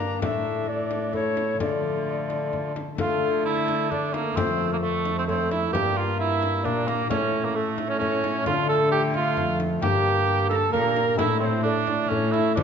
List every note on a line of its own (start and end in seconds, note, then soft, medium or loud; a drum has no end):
0.00 0.24 G2 medium
0.00 0.21 A#3 medium
0.00 0.17 D4 medium
0.00 0.21 D4 medium
0.00 0.23 A#4 soft
0.00 0.20 A#5 medium
0.00 frame drum soft
0.17 1.59 A2 soft
0.17 0.63 A3 soft
0.17 0.64 D4 soft
0.17 0.66 A4 soft
0.17 0.26 F5 medium
0.22 1.59 A2 medium
0.22 0.67 A3 medium
0.22 0.67 D4 medium
0.22 0.70 E5 medium
0.22 frame drum medium
0.64 1.10 A3 soft
0.64 1.14 D4 soft
0.64 1.12 A4 soft
0.68 1.13 A3 medium
0.68 1.13 D4 medium
0.68 1.14 D5 medium
0.91 frame drum soft
1.11 1.56 A3 soft
1.11 1.59 A3 medium
1.11 1.61 E4 soft
1.11 1.59 E4 soft
1.11 1.58 A4 soft
1.11 frame drum soft
1.15 1.59 C#5 medium
1.37 frame drum soft
1.57 2.76 D3 medium
1.57 5.48 F3 soft
1.57 2.94 A3 soft
1.57 2.74 A3 soft
1.57 2.74 F4 soft
1.57 2.97 A4 soft
1.57 2.74 D5 medium
1.57 frame drum medium
1.61 2.98 D3 soft
2.30 frame drum soft
2.53 frame drum soft
2.76 frame drum soft
2.95 4.33 D3 medium
2.95 4.38 D3 medium
2.95 4.32 A3 soft
2.95 5.70 D4 soft
2.95 4.34 A4 soft
2.95 3.42 F5 medium
2.95 frame drum medium
2.99 3.87 A3 medium
2.99 3.42 F4 medium
3.45 3.92 E4 loud
3.45 3.94 E5 medium
3.68 frame drum soft
3.90 4.36 A3 medium
3.90 4.15 D4 medium
3.90 4.14 D5 medium
3.90 frame drum soft
4.14 4.38 A#3 medium
4.14 4.36 A#4 medium
4.14 frame drum soft
4.33 5.75 F2 medium
4.33 5.73 A3 medium
4.33 4.71 C4 medium
4.33 5.74 F4 medium
4.33 5.74 A4 soft
4.33 4.70 C5 medium
4.37 5.71 F2 medium
4.37 4.82 A3 medium
4.37 frame drum medium
4.71 4.77 A#3 medium
4.71 4.76 A#4 medium
4.82 5.27 A3 medium
4.82 5.16 A3 medium
4.82 5.16 A4 medium
5.06 frame drum soft
5.17 5.23 C4 medium
5.17 5.28 C5 medium
5.28 5.75 A3 medium
5.28 5.50 C4 medium
5.28 5.34 C#5 medium
5.28 frame drum soft
5.33 5.53 C5 medium
5.51 5.72 E4 medium
5.51 5.72 E5 medium
5.51 frame drum soft
5.70 7.11 G2 medium
5.70 6.66 G2 medium
5.70 7.10 A#3 medium
5.70 7.10 D4 soft
5.70 7.11 G4 soft
5.70 5.98 G4 medium
5.70 5.96 G5 loud
5.74 6.64 A#3 medium
5.74 frame drum medium
5.96 6.19 F4 medium
5.96 6.01 G5 medium
6.00 6.19 F5 medium
6.18 6.66 E4 loud
6.18 6.62 E5 medium
6.43 frame drum soft
6.62 7.10 A#2 medium
6.62 7.12 A#2 medium
6.62 7.12 A#3 medium
6.62 6.89 D4 medium
6.62 6.85 D5 medium
6.62 frame drum soft
6.86 7.10 A#3 medium
6.86 7.09 A#4 medium
6.86 frame drum medium
7.06 8.47 A2 medium
7.06 7.95 A3 medium
7.06 7.96 C#4 medium
7.06 7.98 E4 soft
7.10 8.44 A2 medium
7.10 7.55 A3 medium
7.10 7.46 C#4 medium
7.10 7.46 C#5 medium
7.10 7.15 D5 medium
7.10 frame drum medium
7.45 7.57 A#3 medium
7.45 7.55 A#4 medium
7.55 7.89 A3 medium
7.55 8.00 A3 medium
7.55 7.90 A4 medium
7.78 frame drum soft
7.88 7.98 C#4 medium
7.88 8.00 C#5 medium
7.97 8.41 A3 medium
7.97 8.46 C#4 medium
7.97 8.44 C#4 medium
7.97 8.47 E4 medium
8.01 8.45 A3 medium
8.01 8.47 C#5 medium
8.01 frame drum soft
8.24 frame drum soft
8.42 9.84 D3 medium
8.42 9.82 A3 medium
8.42 9.80 D4 medium
8.42 9.84 F4 medium
8.42 8.68 F5 medium
8.46 9.39 D3 medium
8.46 9.79 A3 medium
8.46 8.68 F4 loud
8.46 frame drum medium
8.69 8.91 A4 loud
8.69 8.75 A5 medium
8.92 9.02 G4 medium
8.92 9.14 G5 medium
9.14 9.58 F4 loud
9.14 9.58 F5 medium
9.14 frame drum soft
9.37 9.84 F2 medium
9.37 9.82 F2 medium
9.37 frame drum soft
9.60 frame drum soft
9.80 10.72 G2 medium
9.80 11.21 G2 medium
9.80 10.68 A#3 medium
9.80 10.56 A#3 medium
9.80 10.70 D4 medium
9.80 10.71 G4 medium
9.80 10.46 G4 loud
9.80 10.46 G5 loud
9.80 frame drum medium
10.49 10.71 A4 medium
10.49 10.56 A#5 loud
10.49 frame drum soft
10.55 10.72 A5 loud
10.69 11.18 A#2 medium
10.69 11.19 A#3 medium
10.69 11.15 D4 medium
10.69 11.20 G4 medium
10.69 11.17 A#4 loud
10.69 11.17 A#5 medium
10.73 11.21 A#2 medium
10.73 11.19 A#3 medium
10.73 frame drum soft
10.96 frame drum soft
11.16 12.09 A2 medium
11.16 11.59 A3 medium
11.16 11.64 A3 medium
11.16 11.60 D4 medium
11.16 11.61 E4 medium
11.16 11.39 E4 loud
11.16 11.41 E5 loud
11.16 frame drum medium
11.40 11.62 C4 medium
11.40 11.46 C#5 medium
11.45 11.64 C5 medium
11.60 12.04 A3 medium
11.60 12.11 D4 medium
11.60 12.10 D4 loud
11.60 12.06 E4 medium
11.65 12.10 A3 medium
11.65 12.12 D5 medium
11.87 frame drum soft
12.06 12.52 A3 medium
12.06 12.33 C#4 medium
12.06 12.57 E4 medium
12.10 12.58 A2 medium
12.10 12.58 A3 medium
12.10 12.33 C#5 medium
12.10 frame drum soft
12.32 12.54 E4 loud
12.32 12.56 E5 medium
12.32 frame drum soft
12.53 12.63 D3 medium
12.53 12.63 F3 medium
12.53 12.63 A3 medium
12.53 12.63 D4 medium
12.53 12.63 F4 soft
12.53 12.61 E5 medium
12.57 12.63 D3 medium
12.57 frame drum medium